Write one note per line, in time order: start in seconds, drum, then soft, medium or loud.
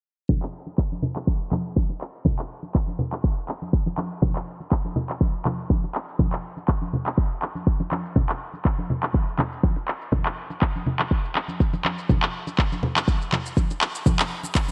0.29 kick loud
0.29 muted conga medium
0.29 high conga loud
0.29 low conga loud
0.29 shaker medium
0.42 clap medium
0.67 muted conga soft
0.67 shaker medium
0.78 kick loud
0.78 clap medium
0.92 high conga medium
0.92 shaker soft
1.02 low conga medium
1.16 clap medium
1.16 muted conga medium
1.27 kick loud
1.27 high conga medium
1.27 shaker medium
1.41 shaker soft
1.51 clap medium
1.51 muted conga soft
1.51 high conga loud
1.51 low conga medium
1.65 shaker medium
1.76 kick loud
1.76 high conga medium
1.76 shaker medium
1.90 muted conga medium
1.90 shaker soft
2.01 clap medium
2.14 shaker medium
2.25 kick loud
2.25 muted conga medium
2.25 high conga loud
2.25 low conga medium
2.25 shaker medium
2.39 clap medium
2.63 muted conga soft
2.63 shaker medium
2.75 kick loud
2.75 clap medium
2.75 shaker medium
2.87 high conga medium
2.87 shaker soft
2.99 low conga medium
3.13 clap medium
3.13 muted conga soft
3.13 shaker medium
3.24 kick loud
3.24 shaker medium
3.37 shaker soft
3.48 clap medium
3.48 muted conga soft
3.62 high conga medium
3.62 shaker medium
3.73 kick loud
3.73 shaker medium
3.86 muted conga soft
3.86 high conga medium
3.86 shaker soft
3.98 clap medium
3.98 high conga medium
4.11 shaker medium
4.22 kick loud
4.22 muted conga soft
4.22 high conga loud
4.22 low conga loud
4.22 shaker medium
4.36 clap medium
4.60 muted conga soft
4.60 shaker medium
4.72 kick loud
4.72 clap medium
4.85 high conga medium
4.85 shaker soft
4.96 low conga medium
5.09 clap medium
5.09 muted conga soft
5.09 shaker medium
5.21 kick loud
5.21 high conga medium
5.21 shaker medium
5.34 shaker soft
5.45 clap medium
5.45 muted conga soft
5.45 high conga medium
5.45 low conga medium
5.59 shaker medium
5.70 kick loud
5.70 high conga medium
5.70 shaker medium
5.84 muted conga soft
5.84 shaker soft
5.95 clap medium
6.08 shaker medium
6.19 kick loud
6.19 muted conga medium
6.19 high conga loud
6.19 low conga loud
6.19 shaker medium
6.32 clap medium
6.32 shaker soft
6.57 muted conga soft
6.57 shaker medium
6.68 kick loud
6.68 clap medium
6.68 shaker medium
6.82 high conga medium
6.82 shaker soft
6.93 low conga medium
7.06 clap medium
7.06 muted conga soft
7.06 shaker medium
7.18 kick loud
7.18 shaker medium
7.31 shaker soft
7.42 clap medium
7.42 muted conga soft
7.55 high conga medium
7.55 shaker medium
7.67 kick loud
7.67 shaker medium
7.80 muted conga soft
7.80 high conga medium
7.80 shaker soft
7.91 clap medium
7.91 high conga medium
8.05 shaker medium
8.16 kick loud
8.16 muted conga soft
8.16 high conga loud
8.16 low conga medium
8.16 shaker medium
8.29 clap medium
8.29 shaker soft
8.54 muted conga soft
8.54 shaker medium
8.65 kick loud
8.65 clap medium
8.65 shaker medium
8.79 high conga medium
8.79 shaker soft
8.90 low conga medium
9.03 clap medium
9.03 muted conga soft
9.03 shaker medium
9.13 kick loud
9.13 high conga medium
9.13 shaker medium
9.28 shaker soft
9.38 clap medium
9.38 muted conga soft
9.38 high conga loud
9.38 low conga medium
9.52 shaker medium
9.63 kick loud
9.63 high conga loud
9.63 shaker medium
9.76 muted conga soft
9.76 shaker soft
9.88 clap medium
10.01 shaker medium
10.12 kick loud
10.12 muted conga medium
10.12 high conga loud
10.12 low conga loud
10.12 shaker medium
10.26 clap medium
10.26 shaker soft
10.50 muted conga soft
10.50 shaker medium
10.62 kick loud
10.62 clap medium
10.62 shaker medium
10.75 high conga medium
10.75 shaker soft
10.86 low conga medium
10.99 clap medium
10.99 muted conga medium
10.99 shaker medium
11.11 kick loud
11.11 shaker medium
11.24 shaker soft
11.35 clap medium
11.35 muted conga soft
11.48 high conga medium
11.48 shaker medium
11.60 kick loud
11.60 shaker medium
11.73 muted conga soft
11.73 high conga medium
11.73 shaker soft
11.85 clap medium
11.85 high conga medium
11.98 shaker medium
12.09 kick loud
12.09 muted conga soft
12.09 high conga medium
12.09 low conga medium
12.09 shaker medium
12.23 clap medium
12.23 shaker soft
12.47 muted conga soft
12.47 shaker medium
12.58 kick loud
12.58 clap medium
12.58 shaker medium
12.72 high conga medium
12.72 shaker soft
12.83 low conga medium
12.96 clap medium
12.96 muted conga soft
12.96 shaker medium
13.08 kick loud
13.08 high conga medium
13.08 shaker medium
13.21 shaker soft
13.32 clap medium
13.32 muted conga soft
13.32 high conga medium
13.32 low conga medium
13.46 shaker medium
13.57 kick loud
13.57 high conga medium
13.57 shaker medium
13.70 muted conga medium
13.70 shaker soft
13.81 clap medium
13.95 shaker medium
14.06 kick loud
14.06 muted conga medium
14.06 high conga loud
14.06 low conga loud
14.06 shaker medium
14.19 clap medium
14.19 shaker soft
14.43 muted conga soft
14.43 shaker medium
14.55 kick loud
14.55 clap medium
14.55 shaker medium